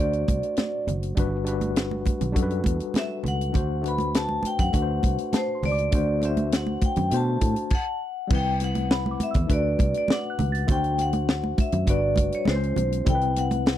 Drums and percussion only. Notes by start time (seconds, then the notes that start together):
0.13 closed hi-hat
0.28 kick, closed hi-hat, muted conga, high conga
0.43 closed hi-hat
0.56 snare, closed hi-hat, muted conga, high conga
0.88 closed hi-hat, muted conga, low conga
1.03 closed hi-hat
1.17 kick, closed hi-hat, muted conga, low conga
1.46 closed hi-hat
1.61 closed hi-hat, high conga
1.76 snare, closed hi-hat, muted conga
1.91 high conga
2.06 kick, closed hi-hat, muted conga, high conga
2.21 closed hi-hat, low conga
2.36 kick, closed hi-hat
2.50 closed hi-hat
2.64 kick, closed hi-hat, muted conga, high conga
2.80 closed hi-hat
2.94 snare, closed hi-hat, muted conga, high conga
3.24 closed hi-hat, low conga
3.41 closed hi-hat
3.54 kick, closed hi-hat, muted conga, low conga
3.84 closed hi-hat, muted conga
3.98 closed hi-hat, high conga
4.14 snare, closed hi-hat
4.29 high conga
4.43 closed hi-hat, muted conga, high conga
4.59 kick, closed hi-hat, low conga
4.73 kick, closed hi-hat, muted conga
5.03 kick, closed hi-hat, high conga
5.18 closed hi-hat
5.33 snare, closed hi-hat, muted conga, high conga
5.63 open hi-hat, low conga
5.78 closed hi-hat
5.92 kick, closed hi-hat, muted conga, low conga
6.22 closed hi-hat, muted conga
6.37 closed hi-hat, high conga
6.52 snare, closed hi-hat
6.67 high conga
6.81 kick, closed hi-hat, muted conga, high conga
6.96 closed hi-hat, low conga
7.11 closed hi-hat, muted conga
7.41 kick, closed hi-hat, muted conga, high conga
7.56 closed hi-hat
7.70 kick, crash
8.30 kick, crash, muted conga, low conga
8.60 closed hi-hat, muted conga
8.75 closed hi-hat, high conga
8.91 snare, muted conga
9.06 high conga
9.20 closed hi-hat, muted conga, high conga
9.34 kick, closed hi-hat, low conga
9.49 kick, closed hi-hat, muted conga
9.79 kick, closed hi-hat, high conga
9.94 closed hi-hat
10.08 snare, muted conga, high conga
10.39 closed hi-hat, muted conga, high conga, low conga
10.55 closed hi-hat
10.68 kick, closed hi-hat, muted conga, low conga
10.84 closed hi-hat
10.98 closed hi-hat, muted conga
11.13 closed hi-hat, high conga
11.29 snare
11.44 high conga
11.58 kick, closed hi-hat, muted conga, high conga
11.72 closed hi-hat, low conga
11.87 kick, closed hi-hat, muted conga
12.16 kick, closed hi-hat, high conga
12.32 closed hi-hat
12.45 snare, muted conga, high conga
12.63 closed hi-hat
12.76 closed hi-hat, muted conga, high conga, low conga
12.92 closed hi-hat
13.06 kick, closed hi-hat, muted conga, low conga
13.21 closed hi-hat
13.36 closed hi-hat, muted conga
13.51 closed hi-hat, high conga
13.66 snare, muted conga